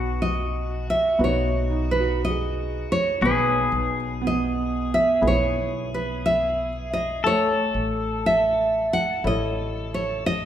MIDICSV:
0, 0, Header, 1, 6, 480
1, 0, Start_track
1, 0, Key_signature, 4, "major"
1, 0, Tempo, 1006711
1, 1533, Time_signature, 4, 2, 24, 8
1, 4984, End_track
2, 0, Start_track
2, 0, Title_t, "Nylon-string guitar"
2, 0, Program_c, 0, 24
2, 0, Note_on_c, 0, 71, 72
2, 78, Note_off_c, 0, 71, 0
2, 104, Note_on_c, 0, 75, 79
2, 427, Note_off_c, 0, 75, 0
2, 429, Note_on_c, 0, 76, 75
2, 585, Note_off_c, 0, 76, 0
2, 591, Note_on_c, 0, 73, 73
2, 912, Note_off_c, 0, 73, 0
2, 912, Note_on_c, 0, 71, 70
2, 1052, Note_off_c, 0, 71, 0
2, 1071, Note_on_c, 0, 75, 79
2, 1390, Note_off_c, 0, 75, 0
2, 1392, Note_on_c, 0, 73, 77
2, 1532, Note_off_c, 0, 73, 0
2, 1551, Note_on_c, 0, 71, 73
2, 2035, Note_on_c, 0, 75, 77
2, 2036, Note_off_c, 0, 71, 0
2, 2353, Note_off_c, 0, 75, 0
2, 2356, Note_on_c, 0, 76, 86
2, 2493, Note_off_c, 0, 76, 0
2, 2515, Note_on_c, 0, 73, 84
2, 2803, Note_off_c, 0, 73, 0
2, 2834, Note_on_c, 0, 71, 71
2, 2983, Note_on_c, 0, 76, 89
2, 2987, Note_off_c, 0, 71, 0
2, 3304, Note_off_c, 0, 76, 0
2, 3306, Note_on_c, 0, 75, 78
2, 3462, Note_off_c, 0, 75, 0
2, 3464, Note_on_c, 0, 73, 84
2, 3938, Note_off_c, 0, 73, 0
2, 3940, Note_on_c, 0, 76, 86
2, 4257, Note_off_c, 0, 76, 0
2, 4259, Note_on_c, 0, 78, 86
2, 4418, Note_off_c, 0, 78, 0
2, 4420, Note_on_c, 0, 75, 78
2, 4739, Note_off_c, 0, 75, 0
2, 4741, Note_on_c, 0, 73, 74
2, 4892, Note_off_c, 0, 73, 0
2, 4894, Note_on_c, 0, 75, 95
2, 4984, Note_off_c, 0, 75, 0
2, 4984, End_track
3, 0, Start_track
3, 0, Title_t, "Pedal steel guitar"
3, 0, Program_c, 1, 26
3, 0, Note_on_c, 1, 66, 74
3, 1537, Note_on_c, 1, 68, 76
3, 1591, Note_off_c, 1, 66, 0
3, 3451, Note_on_c, 1, 69, 97
3, 3510, Note_off_c, 1, 68, 0
3, 4984, Note_off_c, 1, 69, 0
3, 4984, End_track
4, 0, Start_track
4, 0, Title_t, "Felt piano"
4, 0, Program_c, 2, 0
4, 0, Note_on_c, 2, 66, 52
4, 811, Note_on_c, 2, 63, 45
4, 945, Note_off_c, 2, 66, 0
4, 952, Note_on_c, 2, 66, 47
4, 1098, Note_on_c, 2, 68, 45
4, 1753, Note_off_c, 2, 63, 0
4, 1884, Note_off_c, 2, 66, 0
4, 2009, Note_on_c, 2, 59, 61
4, 2017, Note_off_c, 2, 68, 0
4, 3184, Note_off_c, 2, 59, 0
4, 4984, End_track
5, 0, Start_track
5, 0, Title_t, "Grand piano"
5, 0, Program_c, 3, 0
5, 0, Control_c, 3, 64, 127
5, 0, Note_on_c, 3, 47, 61
5, 565, Note_on_c, 3, 59, 48
5, 572, Note_on_c, 3, 63, 41
5, 573, Note_on_c, 3, 66, 47
5, 1511, Note_off_c, 3, 59, 0
5, 1515, Note_off_c, 3, 63, 0
5, 1515, Note_off_c, 3, 66, 0
5, 1516, Note_off_c, 3, 47, 0
5, 1537, Note_on_c, 3, 47, 58
5, 1540, Control_c, 3, 64, 0
5, 1630, Control_c, 3, 64, 127
5, 2486, Note_on_c, 3, 64, 44
5, 2487, Note_on_c, 3, 59, 49
5, 2489, Note_on_c, 3, 68, 53
5, 3429, Note_off_c, 3, 59, 0
5, 3429, Note_off_c, 3, 64, 0
5, 3430, Note_off_c, 3, 68, 0
5, 3434, Note_off_c, 3, 47, 0
5, 3457, Control_c, 3, 64, 0
5, 3457, Note_on_c, 3, 57, 65
5, 3533, Control_c, 3, 64, 127
5, 4405, Note_on_c, 3, 64, 48
5, 4411, Note_on_c, 3, 69, 43
5, 4411, Note_on_c, 3, 73, 50
5, 4984, Note_off_c, 3, 57, 0
5, 4984, Note_off_c, 3, 64, 0
5, 4984, Note_off_c, 3, 69, 0
5, 4984, Note_off_c, 3, 73, 0
5, 4984, End_track
6, 0, Start_track
6, 0, Title_t, "Upright bass"
6, 0, Program_c, 4, 32
6, 0, Note_on_c, 4, 35, 71
6, 434, Note_off_c, 4, 35, 0
6, 569, Note_on_c, 4, 35, 76
6, 1350, Note_off_c, 4, 35, 0
6, 1533, Note_on_c, 4, 35, 82
6, 1728, Note_off_c, 4, 35, 0
6, 1774, Note_on_c, 4, 35, 73
6, 2356, Note_off_c, 4, 35, 0
6, 2491, Note_on_c, 4, 35, 82
6, 3454, Note_off_c, 4, 35, 0
6, 3454, Note_on_c, 4, 33, 87
6, 3647, Note_off_c, 4, 33, 0
6, 3692, Note_on_c, 4, 33, 75
6, 4273, Note_off_c, 4, 33, 0
6, 4407, Note_on_c, 4, 33, 88
6, 4984, Note_off_c, 4, 33, 0
6, 4984, End_track
0, 0, End_of_file